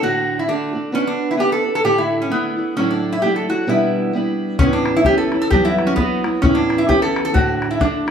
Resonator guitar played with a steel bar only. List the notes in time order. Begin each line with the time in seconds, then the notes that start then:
0.03 F#4
0.39 E4
0.49 D4
0.95 C#4
1.07 D4
1.31 E4
1.40 G4
1.52 A4
1.75 A4
1.85 G4
1.98 E4
2.22 C#4
2.31 B3
2.77 C#4
2.91 D4
3.13 E4
3.22 G4
3.36 A4
3.50 F#4
3.69 E4
4.59 C#4
4.73 D4
4.97 E4
5.06 G4
5.18 A4
5.42 A4
5.50 G4
5.65 E4
5.87 C#4
5.96 B3
6.42 C#4
6.55 D4
6.78 E4
6.89 G4
7.02 A4
7.25 A4
7.34 F#4
7.71 E4
7.81 D4